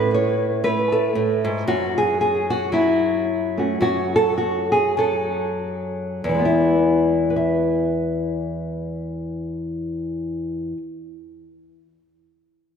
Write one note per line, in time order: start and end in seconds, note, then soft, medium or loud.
0.00 1.14 A2 medium
0.00 0.42 A4 medium
0.00 0.13 B4 loud
0.14 0.64 C#5 medium
0.64 2.01 A3 medium
0.64 1.45 B4 medium
0.92 1.67 A4 medium
1.15 1.45 A2 medium
1.45 1.67 G#2 medium
1.68 3.78 F#2 medium
1.68 1.97 F#4 loud
1.98 2.20 G#4 loud
2.21 2.50 G#4 medium
2.50 2.72 F#4 loud
2.72 4.75 F#3 medium
2.72 3.57 E4 medium
3.58 3.78 A3 soft
3.58 3.78 C#4 medium
3.58 3.82 F#4 medium
3.81 6.21 F#2 medium
3.81 4.13 F#4 loud
4.16 4.37 A4 loud
4.38 4.71 F#4 medium
4.72 4.97 G#4 loud
4.97 6.21 F#3 medium
4.97 6.26 A4 medium
6.24 10.72 E2 medium
6.29 10.77 E3 medium
6.35 10.83 G#3 medium
6.39 7.30 B3 medium
6.45 7.29 E4 medium
7.30 11.78 B4 medium
7.36 11.85 E5 medium